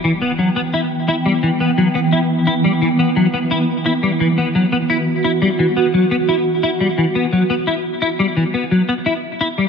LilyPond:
<<
  \new Staff \with { instrumentName = "Synth drone" } { \time 4/4 \key e \minor \tempo 4 = 173 << { g''1~ | g''1~ | g''1 | fis'1~ |
fis'1~ | fis'1 | r1 | } \\ { <e b>1~ | <e b>1~ | <e b>1~ | <e b>1~ |
<e b>1~ | <e b>1 | r1 | } >> }
  \new Staff \with { instrumentName = "Clean electric guitar" } { \time 4/4 \key e \minor e8 b8 fis8 b8 e'8 r8 e'8 g8 | e8 b8 fis8 b8 e'8 r8 e'8 g8 | e8 b8 fis8 b8 e'8 r8 e'8 g8 | e8 b8 fis8 b8 e'8 r8 e'8 g8 |
e8 b8 fis8 b8 e'8 r8 e'8 g8 | e8 b8 fis8 b8 e'8 r8 e'8 g8 | e8 b8 fis8 b8 e'8 r8 e'8 g8 | }
>>